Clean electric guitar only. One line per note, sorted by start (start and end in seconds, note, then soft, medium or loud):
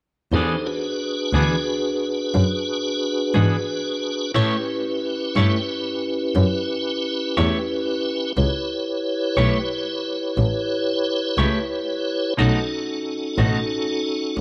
0.34 0.54 E3 medium
0.34 0.55 B3 medium
0.34 0.55 D4 medium
0.34 0.55 G#4 medium
1.34 1.55 E3 soft
1.34 1.55 B3 soft
1.34 1.55 D4 medium
1.34 1.55 G#4 medium
3.34 3.56 E3 soft
3.34 3.56 B3 soft
3.34 3.56 D4 medium
3.34 3.55 G#4 medium
4.34 4.55 A3 medium
4.34 4.55 E4 medium
4.34 4.56 G4 medium
4.34 4.56 C#5 medium
5.36 5.57 A3 soft
5.36 5.57 E4 medium
5.36 5.57 G4 medium
5.36 5.56 C#5 medium
7.37 7.58 A3 soft
7.37 7.57 E4 medium
7.37 7.57 G4 medium
7.37 7.57 C#5 medium
9.37 9.58 A3 medium
9.37 9.58 E4 soft
9.37 9.58 G4 medium
9.37 9.57 C#5 medium
11.38 11.59 A3 soft
11.38 11.59 E4 medium
11.38 11.58 G4 medium
11.38 11.58 C#5 medium
12.37 12.58 B2 medium
12.37 12.58 A3 medium
12.37 12.58 D#4 medium
12.37 12.59 F#4 medium
13.38 13.59 B2 soft
13.38 13.58 A3 soft
13.38 13.59 D#4 medium
13.38 13.58 F#4 medium